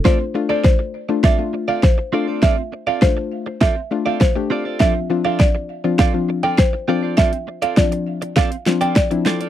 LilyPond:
<<
  \new Staff \with { instrumentName = "Marimba" } { \time 4/4 \key f \major \tempo 4 = 101 c''8. d''16 c''4 e''8. f''16 c''4 | e''8. f''16 c''4 e''8. f''16 c''4 | e''8. f''16 d''4 f''8. g''16 c''4 | e''8. f''16 d''4 f''8. g''16 d''4 | }
  \new Staff \with { instrumentName = "Clean electric guitar" } { \time 4/4 \key f \major <c' f' a' d''>16 r8 <c' f' a' d''>16 r4 <c' f' a' d''>16 r8 <c' f' a' d''>16 r8 <c' f' a' d''>16 <c' f' a' d''>16 | <c' f' a' d''>16 r8 <c' f' a' d''>16 r4 <c' f' a' d''>16 r8 <c' f' a' d''>16 r8 <c' f' a' d''>16 <c' f' a' d''>16 | <c' f' a' d''>16 r8 <c' f' a' d''>16 r4 <c' f' a' d''>16 r8 <c' f' a' d''>16 r8 <c' f' a' d''>16 <c' f' a' d''>16 | <c' f' a' d''>16 r8 <c' f' a' d''>16 r4 <c' f' a' d''>16 r8 <c' f' a' d''>16 r8 <c' f' a' d''>16 <c' f' a' d''>16 | }
  \new Staff \with { instrumentName = "Synth pluck" } { \time 4/4 \key f \major <a d' f'>16 r16 <a d' f'>8 r8. <a d' f'>16 r16 <a d' f'>8 r8. <a d' f'>8~ | <a d' f'>16 r8. <a d' f'>8. r8. <a d' f'>16 r8 <a d' g'>16 r8 | <f c' d' f'>16 r16 <f c' d' f'>8 r8. <f c' d' f'>16 r16 <f c' d' f'>8 r8. <f c' d' f'>8~ | <f c' d' f'>16 r8. <f c' d' f'>8. r8. <f c' d' f'>16 r8 <f c' d' e'>16 r8 | }
  \new DrumStaff \with { instrumentName = "Drums" } \drummode { \time 4/4 <bd sn>4 <bd sn>4 <bd sn>4 <bd sn>4 | <bd sn>4 <bd sn>4 <bd sn>4 <bd sn>4 | <bd sn>4 <bd sn>4 <bd sn>4 <bd sn>4 | <bd sn>16 hh8 hh16 <bd sn>16 hh8 hh16 <bd sn>16 hh16 sn16 hh16 <bd sn>16 hh16 sn16 hh16 | }
>>